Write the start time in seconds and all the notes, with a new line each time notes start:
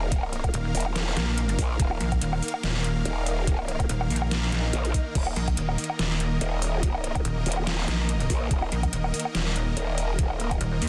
Already playing: D#1 D#3 A#3 A#4 F5
0.12 kick, closed hi-hat
0.23 low woodblock
0.33 closed hi-hat
0.44 kick, closed hi-hat, low woodblock
0.54 D#1, closed hi-hat
0.75 D#1, open hi-hat
0.80 closed hi-hat
0.86 low woodblock
0.96 snare, closed hi-hat
1.17 A#1, snare, closed hi-hat
1.38 closed hi-hat
1.49 closed hi-hat
1.59 A#1, kick, open hi-hat
1.80 D#1, kick, closed hi-hat
1.91 low woodblock
2.00 A#1, closed hi-hat
2.12 kick, closed hi-hat, low woodblock
2.21 D#1, closed hi-hat
2.33 low woodblock
2.42 open hi-hat
2.48 closed hi-hat
2.54 low woodblock
2.63 D#1, snare, closed hi-hat
2.84 closed hi-hat
3.05 D#1, closed hi-hat
3.26 open hi-hat
3.47 kick, closed hi-hat
3.59 low woodblock
3.68 closed hi-hat
3.80 kick, closed hi-hat, low woodblock
3.89 D#1, closed hi-hat
4.01 low woodblock
4.10 A#1, open hi-hat
4.16 closed hi-hat
4.22 low woodblock
4.31 snare, closed hi-hat, swell
4.52 snare, closed hi-hat
4.73 A#1, closed hi-hat
4.85 closed hi-hat
4.94 kick, open hi-hat
5.15 D#1 D#5, kick, closed hi-hat, crash
5.27 low woodblock
5.36 A#1, closed hi-hat
5.48 kick, closed hi-hat, low woodblock
5.57 D#1, closed hi-hat
5.69 low woodblock
5.78 open hi-hat
5.84 closed hi-hat
5.90 low woodblock
5.99 D#1, snare, closed hi-hat
6.20 closed hi-hat
6.41 D#1, closed hi-hat
6.62 open hi-hat
6.83 kick, closed hi-hat
6.94 low woodblock
7.04 closed hi-hat
7.15 kick, closed hi-hat, low woodblock
7.25 D#1, closed hi-hat
7.46 D#1, open hi-hat
7.52 closed hi-hat
7.57 low woodblock
7.67 snare, closed hi-hat
7.88 A#1, snare, closed hi-hat
8.09 closed hi-hat
8.20 closed hi-hat
8.30 A#1, kick, open hi-hat
8.51 D#1, kick, closed hi-hat
8.62 low woodblock
8.72 A#1, closed hi-hat
8.83 kick, closed hi-hat, low woodblock
8.93 D#1, closed hi-hat
9.04 low woodblock
9.14 open hi-hat
9.20 closed hi-hat
9.25 low woodblock
9.35 D#1, snare, closed hi-hat
9.56 closed hi-hat
9.77 D#1, closed hi-hat
9.98 open hi-hat
10.19 kick, closed hi-hat
10.30 low woodblock
10.35 D1
10.40 closed hi-hat
10.51 kick, closed hi-hat, low woodblock
10.61 D#1, closed hi-hat
10.82 D#2, open hi-hat